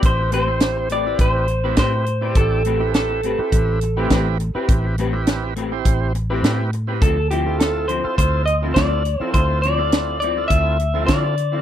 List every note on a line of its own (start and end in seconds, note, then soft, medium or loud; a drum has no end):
0.00 1.15 A1 medium
0.00 0.30 C4 medium
0.00 0.30 E4 medium
0.00 0.30 G4 medium
0.00 0.31 B4 medium
0.00 kick loud
0.00 closed hi-hat medium
0.06 0.33 C5 medium
0.19 muted clean electric guitar stroke soft
0.31 0.47 A3 medium
0.31 0.47 C4 medium
0.31 0.46 G4 medium
0.31 0.46 B4 medium
0.31 0.92 C5 medium
0.31 closed hi-hat medium
0.47 0.88 C4 medium
0.47 0.89 E4 medium
0.47 0.89 G4 medium
0.47 0.89 C5 medium
0.47 muted clean electric guitar stroke soft
0.60 snare loud
0.60 closed hi-hat medium
0.76 muted clean electric guitar stroke soft
0.89 1.05 A3 medium
0.89 1.06 C4 medium
0.89 1.05 G4 medium
0.89 1.04 B4 medium
0.89 1.21 D5 medium
0.89 closed hi-hat medium
1.06 1.47 C4 medium
1.06 1.47 E4 medium
1.06 1.47 G4 medium
1.06 1.47 B4 medium
1.06 muted clean electric guitar stroke soft
1.19 1.74 A1 medium
1.19 1.78 C5 medium
1.19 muted clean electric guitar stroke soft
1.19 kick medium
1.19 closed hi-hat medium
1.48 muted clean electric guitar stroke soft
1.48 closed hi-hat soft
1.64 1.77 A3 medium
1.64 2.05 C4 medium
1.64 1.77 C4 medium
1.64 2.05 E4 medium
1.64 1.78 G4 medium
1.64 2.05 G4 medium
1.64 1.78 B4 medium
1.64 2.05 B4 medium
1.77 2.37 A2 medium
1.77 1.93 A3 medium
1.77 1.93 C4 medium
1.77 1.93 G4 medium
1.77 1.92 B4 medium
1.77 2.38 C5 medium
1.77 kick medium
1.77 snare loud
1.77 closed hi-hat medium
1.93 muted clean electric guitar stroke soft
2.06 muted clean electric guitar stroke soft
2.06 closed hi-hat medium
2.21 2.63 C4 medium
2.21 2.40 C4 soft
2.21 2.63 E4 medium
2.21 2.63 G4 medium
2.21 2.40 G4 medium
2.21 2.39 B4 medium
2.21 2.63 D5 medium
2.35 3.34 A1 medium
2.35 2.94 A4 medium
2.35 kick loud
2.35 closed hi-hat medium
2.52 muted clean electric guitar stroke soft
2.65 2.80 A3 medium
2.65 2.81 C4 medium
2.65 2.81 G4 medium
2.65 2.80 B4 medium
2.65 closed hi-hat medium
2.79 3.21 C4 medium
2.79 3.21 E4 medium
2.79 3.21 G4 medium
2.79 3.21 B4 medium
2.79 muted clean electric guitar stroke soft
2.94 4.65 A4 medium
2.94 snare loud
2.94 closed hi-hat medium
3.10 muted clean electric guitar stroke soft
3.23 3.39 A3 medium
3.23 3.39 C4 medium
3.23 3.39 G4 medium
3.23 3.39 B4 medium
3.23 closed hi-hat medium
3.38 3.79 C4 medium
3.38 3.79 E4 medium
3.38 3.80 G4 medium
3.38 3.80 B4 medium
3.38 muted fingered electric bass stroke soft
3.38 muted clean electric guitar stroke soft
3.52 4.08 A1 loud
3.52 muted clean electric guitar stroke soft
3.52 kick medium
3.52 closed hi-hat medium
3.81 muted clean electric guitar stroke soft
3.81 closed hi-hat medium
3.97 4.11 A3 medium
3.97 4.38 C4 medium
3.97 4.12 C4 medium
3.97 4.38 E4 medium
3.97 4.38 G4 medium
3.97 4.11 G4 medium
3.97 4.38 B4 loud
3.97 4.11 B4 medium
4.10 4.52 A1 loud
4.10 4.26 A3 medium
4.10 4.27 C4 medium
4.10 4.27 G4 medium
4.10 4.26 B4 medium
4.10 kick medium
4.10 snare loud
4.10 closed hi-hat medium
4.27 muted clean electric guitar stroke soft
4.40 muted clean electric guitar stroke soft
4.40 closed hi-hat medium
4.55 4.96 C4 medium
4.55 4.73 C4 soft
4.55 4.96 E4 medium
4.55 4.96 G4 medium
4.55 4.72 G4 medium
4.55 4.72 B4 medium
4.55 4.96 B4 medium
4.55 muted fingered electric bass stroke soft
4.69 5.81 A1 medium
4.69 kick loud
4.69 closed hi-hat medium
4.84 muted clean electric guitar stroke soft
4.98 5.13 A3 medium
4.98 5.13 C4 medium
4.98 5.13 G4 medium
4.98 5.12 B4 medium
4.98 closed hi-hat medium
5.12 5.54 C4 medium
5.12 5.54 E4 medium
5.12 5.54 G4 medium
5.12 5.54 B4 medium
5.12 muted clean electric guitar stroke medium
5.27 snare loud
5.27 closed hi-hat medium
5.42 muted clean electric guitar stroke soft
5.56 5.71 A3 medium
5.56 5.72 C4 medium
5.56 5.71 G4 medium
5.56 5.71 B4 medium
5.56 closed hi-hat medium
5.71 6.12 C4 medium
5.71 6.12 E4 medium
5.71 6.13 G4 medium
5.71 6.13 C5 medium
5.71 muted clean electric guitar stroke soft
5.85 6.40 A1 medium
5.85 muted clean electric guitar stroke soft
5.85 kick medium
5.85 closed hi-hat medium
6.15 muted clean electric guitar stroke soft
6.15 closed hi-hat medium
6.30 6.43 A3 medium
6.30 6.70 C4 medium
6.30 6.44 C4 medium
6.30 6.71 E4 medium
6.30 6.71 G4 medium
6.30 6.44 G4 medium
6.30 6.44 B4 medium
6.30 6.71 B4 loud
6.43 7.04 A2 medium
6.43 6.59 A3 medium
6.43 6.59 C4 medium
6.43 6.59 G4 medium
6.43 6.59 B4 medium
6.43 snare loud
6.43 closed hi-hat medium
6.60 muted clean electric guitar stroke soft
6.73 muted clean electric guitar stroke soft
6.73 closed hi-hat medium
6.87 7.01 C4 medium
6.87 7.02 C4 soft
6.87 7.01 E4 medium
6.87 7.02 G4 medium
6.87 7.02 G4 soft
6.87 7.02 B4 medium
7.02 8.00 D2 medium
7.02 7.17 D3 medium
7.02 7.17 F3 medium
7.02 7.17 C4 medium
7.02 7.16 E4 medium
7.02 7.30 A4 medium
7.02 kick loud
7.02 closed hi-hat medium
7.17 muted clean electric guitar stroke soft
7.31 7.46 D3 medium
7.31 7.46 F3 medium
7.31 7.46 C4 medium
7.31 7.45 E4 medium
7.31 7.59 G4 medium
7.31 closed hi-hat medium
7.45 7.86 C4 medium
7.45 7.87 E4 medium
7.45 7.87 F4 medium
7.45 7.87 A4 medium
7.45 muted clean electric guitar stroke soft
7.60 7.90 A4 medium
7.60 snare loud
7.60 closed hi-hat medium
7.76 muted clean electric guitar stroke soft
7.88 8.04 D3 medium
7.88 8.04 F3 medium
7.88 8.04 C4 medium
7.88 8.03 E4 medium
7.88 8.17 C5 medium
7.88 closed hi-hat medium
8.04 8.45 C4 medium
8.04 8.45 E4 medium
8.04 8.45 F4 medium
8.04 8.45 A4 medium
8.04 muted fingered electric bass stroke soft
8.04 muted clean electric guitar stroke soft
8.18 8.73 D2 medium
8.18 8.45 C5 medium
8.18 muted clean electric guitar stroke soft
8.18 kick medium
8.18 closed hi-hat medium
8.46 8.54 D#5 medium
8.46 muted clean electric guitar stroke soft
8.46 closed hi-hat medium
8.62 8.76 D3 medium
8.62 8.77 F3 medium
8.62 9.03 C4 medium
8.62 8.77 C4 medium
8.62 9.03 E4 medium
8.62 8.77 E4 medium
8.62 9.03 F4 medium
8.62 9.03 A4 medium
8.74 9.18 D2 loud
8.74 8.92 D3 medium
8.74 8.92 F3 medium
8.74 9.21 D5 medium
8.74 kick medium
8.74 snare loud
8.74 closed hi-hat medium
8.78 8.92 C4 medium
8.78 8.91 E4 medium
8.92 muted clean electric guitar stroke soft
9.05 muted clean electric guitar stroke soft
9.05 closed hi-hat medium
9.20 9.38 F3 soft
9.20 9.61 C4 medium
9.20 9.38 C4 soft
9.20 9.61 E4 medium
9.20 9.38 E4 medium
9.20 9.61 F4 medium
9.20 9.62 A4 medium
9.20 9.33 C5 medium
9.20 muted fingered electric bass stroke soft
9.34 10.46 D2 medium
9.34 9.62 C5 loud
9.34 kick loud
9.34 closed hi-hat medium
9.51 muted clean electric guitar stroke soft
9.62 9.79 D3 medium
9.62 9.79 F3 medium
9.62 9.79 C4 medium
9.62 9.78 E4 medium
9.62 10.19 D5 medium
9.62 closed hi-hat medium
9.78 10.19 C4 medium
9.78 10.19 E4 medium
9.78 10.19 F4 medium
9.78 10.19 A4 medium
9.78 muted clean electric guitar stroke soft
9.92 snare loud
9.92 closed hi-hat medium
10.08 muted clean electric guitar stroke soft
10.20 10.37 D3 medium
10.20 10.37 F3 medium
10.20 10.37 C4 medium
10.20 10.47 D5 medium
10.20 closed hi-hat medium
10.24 10.36 E4 medium
10.37 10.77 C4 medium
10.37 10.78 E4 medium
10.37 10.78 F4 medium
10.37 10.78 A4 medium
10.37 muted clean electric guitar stroke soft
10.48 11.05 D2 medium
10.48 11.03 E5 loud
10.48 muted clean electric guitar stroke soft
10.48 kick medium
10.48 closed hi-hat medium
10.80 muted clean electric guitar stroke soft
10.80 closed hi-hat medium
10.94 11.08 D3 medium
10.94 11.09 F3 medium
10.94 11.35 C4 medium
10.94 11.09 C4 medium
10.94 11.35 E4 medium
10.94 11.09 E4 medium
10.94 11.36 F4 medium
10.94 11.36 A4 medium
11.06 11.62 D3 medium
11.06 11.24 D3 medium
11.06 11.62 D5 medium
11.06 kick medium
11.06 snare loud
11.06 closed hi-hat medium
11.10 11.25 F3 medium
11.10 11.24 C4 medium
11.10 11.23 E4 medium
11.24 muted clean electric guitar stroke soft
11.38 muted clean electric guitar stroke soft
11.38 closed hi-hat medium
11.52 11.62 F3 soft
11.52 11.62 C4 medium
11.52 11.62 E4 medium
11.52 11.62 F4 medium
11.52 11.62 A4 medium